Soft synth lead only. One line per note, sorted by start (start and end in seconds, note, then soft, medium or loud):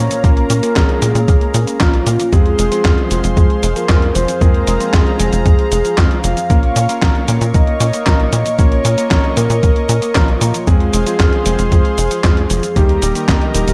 0.00 0.25 C#5 loud
0.24 0.78 A#4 loud
0.76 1.28 G#4 loud
1.28 1.82 G#4 loud
1.81 2.34 F4 medium
2.33 3.11 G#4 medium
3.37 3.78 G#4 medium
3.76 4.17 A#4 medium
4.15 4.43 C5 medium
4.42 4.95 A#4 loud
4.94 5.45 G#4 medium
5.46 5.99 G#4 medium
5.98 6.49 F5 loud
6.50 7.24 F5 loud
7.54 8.55 D#5 loud
8.59 9.07 C#5 loud
9.11 9.38 C#5 loud
9.37 10.17 A#4 loud
10.15 10.69 F4 medium
10.67 11.71 G#4 loud
11.72 12.78 G#4 loud
12.76 13.73 G4 loud